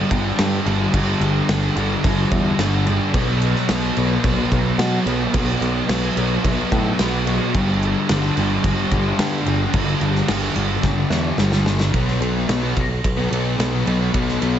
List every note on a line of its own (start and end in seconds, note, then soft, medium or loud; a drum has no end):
0.00 0.37 G2 medium
0.00 0.38 D3 medium
0.00 0.39 G3 medium
0.00 1.94 B3 medium
0.11 0.31 G1 medium
0.11 kick medium
0.11 crash medium
0.37 0.91 G2 medium
0.37 0.58 G2 medium
0.37 0.67 D3 medium
0.37 0.64 G3 medium
0.37 snare loud
0.37 crash medium
0.65 0.85 G1 medium
0.65 0.93 D3 medium
0.65 0.94 G3 medium
0.65 crash medium
0.92 1.13 G1 medium
0.92 1.47 G2 medium
0.92 1.48 D3 medium
0.92 1.50 G3 medium
0.92 kick loud
0.92 crash medium
1.21 1.40 G1 medium
1.21 crash medium
1.48 1.68 G1 medium
1.48 2.03 G2 medium
1.48 1.77 D3 medium
1.48 1.74 G3 medium
1.48 snare loud
1.48 crash medium
1.75 1.96 G1 medium
1.75 2.59 D3 medium
1.75 2.60 G3 medium
1.75 crash medium
2.04 2.24 G1 medium
2.04 kick loud
2.04 crash medium
2.31 2.51 E2 medium
2.31 kick medium
2.31 crash medium
2.58 2.98 G1 medium
2.58 3.12 G2 medium
2.58 2.88 D3 medium
2.58 2.85 G3 medium
2.58 snare loud
2.58 crash medium
2.86 3.13 D3 medium
2.86 3.12 G3 medium
2.86 crash medium
3.13 3.53 B1 medium
3.13 3.68 B2 medium
3.13 3.70 F#3 medium
3.13 3.71 B3 loud
3.13 kick loud
3.13 crash medium
3.42 crash medium
3.55 snare soft
3.68 3.89 B1 medium
3.68 4.79 B2 medium
3.68 3.99 F#3 medium
3.68 3.96 B3 medium
3.68 snare loud
3.68 crash medium
3.96 4.16 B1 medium
3.96 4.79 F#3 medium
3.96 4.81 B3 medium
3.96 crash medium
4.24 4.44 B1 loud
4.24 kick loud
4.24 crash medium
4.52 4.71 B1 medium
4.52 kick medium
4.52 crash medium
4.78 4.98 B2 medium
4.78 5.33 B2 medium
4.78 5.08 F#3 medium
4.78 5.06 B3 medium
4.78 snare loud
4.78 crash medium
5.06 5.26 B1 medium
5.06 5.35 F#3 medium
5.06 5.37 B3 medium
5.06 crash medium
5.34 5.54 B1 loud
5.34 5.87 B2 medium
5.34 5.89 F#3 medium
5.34 5.91 B3 medium
5.34 kick loud
5.34 crash medium
5.61 5.81 B1 medium
5.61 crash medium
5.88 6.09 B1 medium
5.88 6.44 B2 medium
5.88 6.18 F#3 medium
5.88 6.16 B3 medium
5.88 snare loud
5.88 crash medium
6.16 6.36 B1 medium
6.16 6.98 F#3 medium
6.16 7.01 B3 medium
6.16 crash medium
6.44 6.64 B1 medium
6.44 kick loud
6.44 crash medium
6.72 6.91 A2 medium
6.72 kick medium
6.72 crash medium
6.98 7.38 B1 medium
6.98 7.52 B2 medium
6.98 7.28 F#3 medium
6.98 7.25 B3 medium
6.98 snare loud
6.98 crash medium
7.26 7.54 F#3 medium
7.26 10.76 B3 medium
7.26 crash medium
7.54 7.94 G1 loud
7.54 8.08 G2 medium
7.54 8.09 D3 medium
7.54 8.11 G3 medium
7.54 kick loud
7.54 crash medium
7.83 crash medium
8.09 8.29 G1 medium
8.09 9.18 G2 medium
8.09 8.38 D3 medium
8.09 8.35 G3 medium
8.09 snare loud
8.09 crash medium
8.36 8.57 G1 medium
8.36 9.18 D3 medium
8.36 9.19 G3 medium
8.36 crash medium
8.64 8.84 G1 medium
8.64 kick loud
8.64 crash medium
8.91 9.11 G1 medium
8.91 kick medium
8.91 crash medium
9.18 9.72 G2 medium
9.18 9.39 G2 medium
9.18 9.47 D3 medium
9.18 9.44 G3 medium
9.18 snare loud
9.18 crash medium
9.45 9.66 G1 medium
9.45 9.73 D3 medium
9.45 9.74 G3 medium
9.45 crash medium
9.73 9.93 G1 loud
9.73 10.26 G2 medium
9.73 10.28 D3 medium
9.73 10.29 G3 medium
9.73 kick loud
9.73 crash medium
10.01 10.21 G1 medium
10.01 crash medium
10.15 snare soft
10.28 10.48 G1 loud
10.28 10.83 G2 medium
10.28 10.57 D3 medium
10.28 10.55 G3 medium
10.28 snare loud
10.28 crash medium
10.56 10.76 G1 medium
10.56 11.38 D3 soft
10.56 11.39 G3 medium
10.56 crash medium
10.83 11.03 G1 medium
10.83 kick loud
10.83 snare medium
11.10 11.30 E2 medium
11.10 snare medium
11.37 11.94 G1 medium
11.37 11.91 G2 medium
11.37 11.67 D3 medium
11.37 11.64 G3 medium
11.37 snare medium
11.52 snare medium
11.66 11.92 D3 medium
11.66 11.92 G3 medium
11.66 snare medium
11.80 snare medium
11.93 12.17 B1 medium
11.93 12.20 B2 medium
11.93 12.22 F#3 medium
11.93 12.23 B3 loud
11.93 kick loud
11.93 ride medium
12.08 snare soft
12.20 12.44 B1 medium
12.20 12.48 B2 medium
12.20 12.49 F#3 medium
12.20 12.51 B3 medium
12.20 ride medium
12.48 12.72 B1 medium
12.48 12.76 B2 medium
12.48 12.64 F#3 medium
12.48 12.61 B3 medium
12.48 snare loud
12.48 ride medium
12.62 12.76 F#3 medium
12.62 12.77 B3 medium
12.76 13.00 B1 medium
12.76 muted distorted electric guitar stroke soft
12.76 kick medium
12.76 ride medium
13.04 13.27 B1 medium
13.04 kick loud
13.04 ride medium
13.17 13.30 F#3 medium
13.17 13.32 B3 medium
13.30 13.54 B1 medium
13.30 13.56 B2 medium
13.30 13.58 F#3 medium
13.30 13.60 B3 medium
13.30 ride medium
13.58 13.82 B1 medium
13.58 13.84 B2 medium
13.58 13.73 F#3 loud
13.58 13.71 B3 loud
13.58 snare loud
13.58 ride loud
13.71 13.85 F#3 medium
13.71 13.88 B3 medium
13.85 14.09 B1 medium
13.85 14.11 B2 medium
13.85 14.01 F#3 medium
13.85 13.99 B3 medium
13.85 ride medium
13.99 14.13 F#3 medium
13.99 14.15 B3 medium
14.12 14.37 B1 medium
14.12 14.39 B2 medium
14.12 14.40 F#3 medium
14.12 14.42 B3 medium
14.12 kick loud
14.12 ride medium
14.29 snare soft
14.40 14.59 B1 medium
14.40 14.59 B2 medium
14.40 14.59 F#3 medium
14.40 14.59 B3 medium
14.40 ride medium